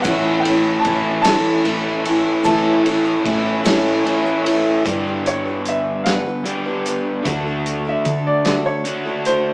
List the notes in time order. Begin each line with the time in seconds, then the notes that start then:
0.02 A1 A2 E3 A3 F#5, kick, ride, shaker
0.06 C#4 E4 A4 C#5
0.40 G5
0.45 A3 C#4 E4 A4, ride
0.80 A5
0.84 A1 E3 A3 C#4 E4, kick, ride, shaker
0.89 A4
1.22 A1 A4 A5, snare, ride, shaker
1.26 A2 E3 A3 C#4 E4
1.63 E3 A3 C#4, ride, shaker
1.68 E4 A4
2.04 E4 A4, ride, shaker
2.08 A3 C#4 E4
2.44 A1 A2 E3 A3 C#4 E4 A4 C#5 A5, kick, ride, shaker
2.83 E4 A4, ride
2.87 A3 C#4 E4
3.05 shaker
3.23 A2 E3 A3, kick, ride, shaker
3.28 C#4 E4 A4
3.65 A2 E3 A3 C#4 E4 A4, snare, ride, shaker
4.04 E3 A3 C#4, ride
4.08 E4 A4
4.26 shaker
4.45 A3 C#4 E4 A4, ride
4.84 G2 D3 G3 B3 D4 G4 B4, kick, closed hi-hat
5.05 D4 G4 B4
5.26 C#5, closed hi-hat
5.45 D4 G4 B4
5.66 G3 D4 G4 B4 E5, closed hi-hat
6.04 G3 D4 F5 F#5, snare, closed hi-hat
6.08 G4 B4
6.26 D4 G4 B4
6.44 G2 D3 G3 B3 D4, closed hi-hat
6.48 G4
6.66 D4 G4 B4
6.85 G3 D4 G4 B4, closed hi-hat
7.25 D2 D3 A3 D4 F#4 A4, kick, closed hi-hat
7.46 D4 F#4 A4
7.66 closed hi-hat
7.85 D4 F#4 A4
7.89 E5
8.05 D3 A3 D4 F#4 A4, kick, closed hi-hat
8.27 D5
8.45 D3 A3 D4 F#4 A4, snare, closed hi-hat
8.65 D4 F#4 A4 C#5
8.84 D3 A3 D4 F#4, closed hi-hat
9.05 D4 F#4 A4
9.25 A3 D4 F#4 A4 C5, closed hi-hat